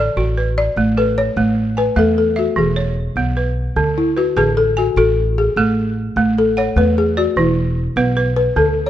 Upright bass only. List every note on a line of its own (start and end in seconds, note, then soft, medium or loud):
0.17 0.67 A1 medium
0.76 1.27 A1 medium
1.36 1.87 A1 medium
1.96 2.47 E2 medium
2.56 3.07 E1 medium
3.16 3.67 B1 medium
3.76 4.27 D2 medium
4.36 4.87 A1 loud
4.96 5.47 A1 medium
5.56 6.07 A1 medium
6.16 6.67 A1 medium
6.76 7.27 E2 loud
7.36 7.87 E1 medium
7.96 8.46 B1 medium
8.56 8.90 D2 medium